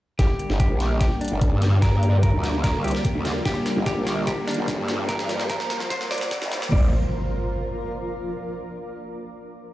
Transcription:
0.19 G1 D3 G3 A#3 F4 G4, kick, snare, closed hi-hat, riser
0.31 A#4
0.39 closed hi-hat
0.50 G1, snare
0.60 G4, kick, closed hi-hat
0.70 A#1
0.78 D5, snare, closed hi-hat
1.00 G4, kick, snare, closed hi-hat
1.21 D4, closed hi-hat
1.25 closed hi-hat
1.28 G1, closed hi-hat
1.41 kick, closed hi-hat
1.52 G2
1.62 snare, closed hi-hat
1.82 A#4, kick, snare, closed hi-hat
2.03 closed hi-hat
2.23 A#4, kick, closed hi-hat
2.33 D2
2.43 snare, closed hi-hat
2.64 A#4, kick, snare, closed hi-hat
2.75 C#2
2.84 G4, closed hi-hat
2.88 closed hi-hat
2.91 snare, closed hi-hat
3.05 kick, closed hi-hat
3.15 D2
3.25 snare, closed hi-hat
3.44 G1 G4 C5, kick, snare, closed hi-hat
3.66 snare, closed hi-hat
3.76 G1
3.86 G4, kick, snare, closed hi-hat
3.97 A#1
4.07 snare, closed hi-hat
4.27 G4, kick, snare, closed hi-hat
4.48 D4, snare, closed hi-hat
4.51 closed hi-hat
4.54 G1, closed hi-hat
4.68 kick, snare, closed hi-hat
4.78 G2
4.88 snare, closed hi-hat
5.09 A#4, kick, snare, closed hi-hat
5.19 snare
5.29 snare, closed hi-hat
5.40 snare
5.50 A#4, kick, snare, closed hi-hat
5.60 snare
5.70 snare, closed hi-hat
5.80 snare
5.90 C5, kick, snare, closed hi-hat
6.01 snare
6.11 D5, snare, closed hi-hat
6.14 closed hi-hat
6.18 snare, closed hi-hat
6.31 kick, snare, closed hi-hat
6.42 G#1, snare
6.52 snare, closed hi-hat
6.62 snare
6.72 G1 D3 G3 A#3 F4 D5, kick, floor tom, crash, impact
6.78 A#4
6.84 D5

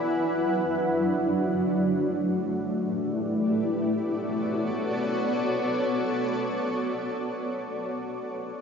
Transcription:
Already playing: F#3 E4 B4 F#5
0.01 D4
1.58 A3
1.73 E4
3.45 B3
3.52 F#4
3.59 A4
3.66 C#5
3.73 D5

